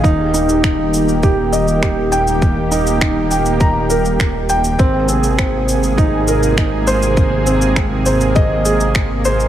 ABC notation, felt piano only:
X:1
M:4/4
L:1/8
Q:1/4=101
K:Eb
V:1 name="Felt piano"
E E E z G e G g | z E E g b B z g | C C C z E B E c | z C C c e A z c |]